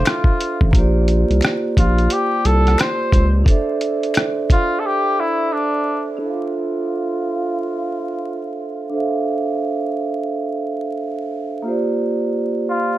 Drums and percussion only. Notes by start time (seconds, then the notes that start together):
0.05 finger snap, cross-stick, closed hi-hat
0.24 kick
0.41 closed hi-hat
0.61 kick
0.73 kick, closed hi-hat
1.08 closed hi-hat
1.31 closed hi-hat
1.41 finger snap, cross-stick, closed hi-hat
1.77 kick, closed hi-hat
1.98 closed hi-hat
2.10 closed hi-hat
2.45 closed hi-hat
2.67 cross-stick, closed hi-hat
2.78 finger snap, cross-stick, closed hi-hat
3.12 kick, closed hi-hat
3.46 kick, closed hi-hat
3.81 closed hi-hat
4.03 closed hi-hat
4.14 finger snap, cross-stick, closed hi-hat
4.50 kick, closed hi-hat